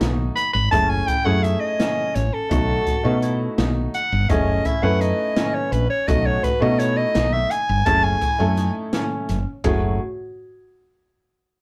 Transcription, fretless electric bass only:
0.01 B1
0.55 G#1
0.72 F#1
1.26 F#2
2.16 A1
2.51 B1
3.05 B2
3.58 B1
4.12 G1
4.30 F#1
4.83 F#2
5.72 A#1
6.08 B1
6.62 B2
7.16 B1
7.69 G1
7.86 F#1
8.40 F#2
9.29 F#1
9.65 F#1

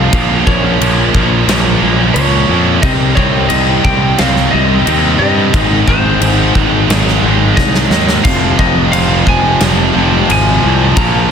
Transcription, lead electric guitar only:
Already playing: F5
0.47 C#5
2.14 C#5
2.82 D#5
3.15 C#5
3.49 D#5
3.84 G5
4.19 F5
4.51 D#5
5.19 D#5
5.89 C5
7.57 D#5
8.24 F5
8.59 D#5
8.92 F5
9.28 G#5
10.31 G#5
10.97 A#5

